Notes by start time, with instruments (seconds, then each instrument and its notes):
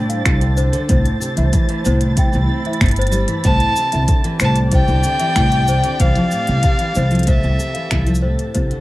Already playing: steel-string acoustic guitar A2, string quartet G3 D4 A4 C5, celesta C5 F5 G5, synth texture A6
0.09 celesta F5, closed hi-hat, shaker
0.25 upright bass C2, steel-string acoustic guitar C3, finger snap, kick, closed hi-hat, shaker
0.41 steel-string acoustic guitar D3, closed hi-hat, shaker
0.57 steel-string acoustic guitar D3, celesta C5, shaker
0.73 steel-string acoustic guitar D3, closed hi-hat, shaker
0.89 upright bass C2, steel-string acoustic guitar A2, string quartet A3, celesta C5, kick, closed hi-hat, shaker
1.06 closed hi-hat, shaker
1.20 steel-string acoustic guitar C3, shaker
1.36 upright bass C2, steel-string acoustic guitar E3, celesta E5, closed hi-hat, shaker
1.52 steel-string acoustic guitar E3, kick, closed hi-hat, shaker
1.57 string quartet E4
1.69 steel-string acoustic guitar E3, closed hi-hat, shaker
1.85 upright bass C2, steel-string acoustic guitar A2, celesta C5, shaker
2.01 closed hi-hat, shaker
2.05 string quartet B5
2.16 steel-string acoustic guitar C3, celesta G5, kick, closed hi-hat, shaker
2.32 upright bass C2, steel-string acoustic guitar E3, shaker
2.49 steel-string acoustic guitar C4
2.65 steel-string acoustic guitar E3, celesta E5, closed hi-hat
2.73 closed hi-hat
2.81 upright bass G1, steel-string acoustic guitar C3, finger snap, kick, closed hi-hat, shaker
2.86 closed hi-hat
2.88 closed hi-hat
2.91 closed hi-hat
2.96 celesta C5, closed hi-hat, shaker
3.02 closed hi-hat
3.07 closed hi-hat
3.12 steel-string acoustic guitar G3, shaker
3.16 celesta C5
3.28 steel-string acoustic guitar E3, closed hi-hat, shaker
3.44 upright bass C2, steel-string acoustic guitar A2, string quartet C4, celesta C5, violin A5, kick, closed hi-hat, shaker
3.60 closed hi-hat, shaker
3.76 steel-string acoustic guitar C3, shaker
3.92 upright bass C2, steel-string acoustic guitar D3, string quartet D5, celesta E5, closed hi-hat, shaker
4.08 steel-string acoustic guitar D3, string quartet G4, kick, closed hi-hat, shaker
4.24 steel-string acoustic guitar E3, closed hi-hat, shaker
4.40 upright bass C2, steel-string acoustic guitar A2, celesta C5, finger snap, shaker
4.44 violin A5
4.56 closed hi-hat, shaker
4.60 string quartet G5
4.72 steel-string acoustic guitar C3, celesta C5, violin G5, kick, closed hi-hat, shaker
4.88 upright bass C2, steel-string acoustic guitar D3, shaker
5.03 steel-string acoustic guitar D3, shaker
5.20 steel-string acoustic guitar E3, celesta E5, closed hi-hat, shaker
5.36 upright bass C2, steel-string acoustic guitar A2, finger snap, kick, closed hi-hat, shaker
5.52 closed hi-hat, shaker
5.68 steel-string acoustic guitar C3, celesta C5, shaker
5.84 steel-string acoustic guitar D3, closed hi-hat, shaker
6.00 upright bass C2, steel-string acoustic guitar E3, celesta C5, violin F5, kick, closed hi-hat, shaker
6.15 steel-string acoustic guitar F3, closed hi-hat, shaker
6.31 steel-string acoustic guitar A2, shaker
6.47 upright bass C2, celesta F5, closed hi-hat, shaker
6.63 steel-string acoustic guitar C3, kick, closed hi-hat, shaker
6.79 steel-string acoustic guitar E3, closed hi-hat, shaker
6.95 upright bass C2, steel-string acoustic guitar E3, celesta C5, shaker
7.08 steel-string acoustic guitar F3, string quartet A4, closed hi-hat, shaker
7.15 closed hi-hat
7.19 closed hi-hat
7.23 closed hi-hat
7.27 steel-string acoustic guitar A2, celesta C5, violin E5, kick, closed hi-hat, shaker
7.43 upright bass C2, shaker
7.59 steel-string acoustic guitar C3, shaker
7.74 steel-string acoustic guitar E3, celesta F5, closed hi-hat
7.91 upright bass C2, steel-string acoustic guitar E3, finger snap, kick, closed hi-hat, shaker
8.07 steel-string acoustic guitar F3, closed hi-hat, shaker
8.15 shaker
8.22 steel-string acoustic guitar A2, celesta C5
8.39 closed hi-hat, shaker
8.54 upright bass C2, steel-string acoustic guitar C3, string quartet G3, celesta C5, kick, closed hi-hat, shaker
8.71 steel-string acoustic guitar D3, closed hi-hat, shaker